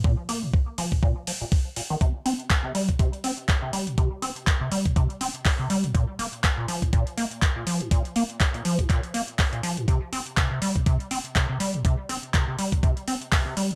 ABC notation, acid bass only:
X:1
M:4/4
L:1/16
Q:"Swing 16ths" 1/4=122
K:Bbdor
V:1 name="Acid bass" clef=bass
B,, z B, B,, z2 F, A,, B,, z F, B,, z2 B,, E, | C, z C z2 C, G, B,, C, z C z2 C, G, B,, | C, z C z2 C, G, B,, C, z C z2 C, G, B,, | B,, z B, z2 B,, F, A,, B,, z B, z2 B,, F, A,, |
B,, z B, z2 B,, F, A,, B,, z B, z2 B,, F, A,, | C, z C z C, C, G, B,, C, z C z C, C, G, B,, | C, z C z C, C, G, B,, C, z C z C, C, G, B,, |]